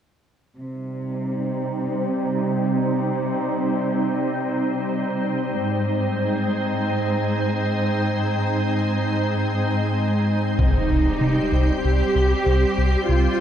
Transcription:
0.58 cello section C3, ambient pad G3 C4 D#4 C5
5.58 cello section G#2, ambient pad G#3 C4 D#4 C5
10.58 analog synth bass C2, ambient pad G3 C4 G4 C5, cello section D#4, impact
10.90 analog synth bass C2
11.21 analog synth bass C3
11.52 analog synth bass C2
11.84 analog synth bass C2, cello section G4
12.15 analog synth bass C2
12.46 analog synth bass C2
12.78 analog synth bass C2
13.09 analog synth bass C2, cello section F4

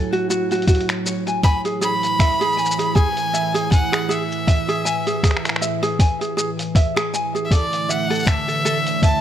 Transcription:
Already playing: ambient pad A2 F#3, ukulele A4
0.13 ukulele F#4, open hi-hat
0.30 ukulele F#4, shaker
0.51 ukulele F#4, open hi-hat, shaker
0.55 open hi-hat
0.62 open hi-hat
0.67 ukulele F#4, kick, open hi-hat, shaker
0.75 open hi-hat
0.81 open hi-hat
0.89 finger snap, open hi-hat, shaker
1.06 ukulele C#5, shaker
1.27 ukulele G#5, open hi-hat, shaker
1.43 ambient pad E3, ukulele G#5, violin B5, kick, open hi-hat, shaker
1.65 ukulele G#4, open hi-hat, shaker
1.81 ukulele G#4, violin B5, shaker
2.03 open hi-hat, shaker
2.19 ukulele E5, finger snap, kick, open hi-hat, shaker
2.41 ukulele G#4, open hi-hat, shaker
2.53 shaker
2.57 ukulele G#5, shaker
2.65 shaker
2.71 shaker
2.79 ukulele G#4, open hi-hat, shaker
2.95 ukulele G#4, violin G#5, kick, shaker
3.17 open hi-hat, shaker
3.33 ukulele E5, shaker
3.54 ukulele G#4, open hi-hat, shaker
3.71 violin F#5, ukulele G#5, kick, open hi-hat, shaker
3.92 ukulele G#4, finger snap, open hi-hat, shaker
4.09 ukulele G#4, violin E5, shaker
4.32 shaker
4.47 ukulele E5, kick, open hi-hat, shaker
4.68 ukulele G#4, open hi-hat, shaker
4.85 ukulele G#5, shaker
5.07 ukulele G#4, open hi-hat, shaker
5.23 ukulele G#4, finger snap, kick, open hi-hat, shaker
5.31 finger snap
5.37 finger snap
5.45 finger snap, open hi-hat, shaker
5.49 finger snap
5.56 finger snap
5.61 ukulele E5, shaker
5.83 ukulele G#4, open hi-hat, shaker
5.99 ukulele G#5, kick, open hi-hat, shaker
6.21 ukulele G#4, open hi-hat, shaker
6.37 ukulele G#4, shaker
6.59 open hi-hat, shaker
6.75 ukulele E5, kick, open hi-hat, shaker
6.96 ukulele G#4, finger snap, open hi-hat, shaker
7.14 ukulele G#5, shaker
7.35 ukulele G#4, shaker
7.45 violin E5
7.50 ambient pad A2 D3 E3 A3, ukulele A4, violin D5, kick, open hi-hat, shaker
7.73 open hi-hat, shaker
7.89 ukulele E5, violin F#5, shaker
8.10 ukulele A4, open hi-hat, shaker
8.14 shaker
8.19 shaker
8.22 shaker
8.25 ukulele A5, finger snap, kick, open hi-hat, shaker
8.28 violin E5, shaker
8.48 ukulele A4, open hi-hat, shaker
8.65 ukulele A4, shaker
8.87 open hi-hat, shaker
9.02 ukulele E5, violin A5, kick, open hi-hat, shaker

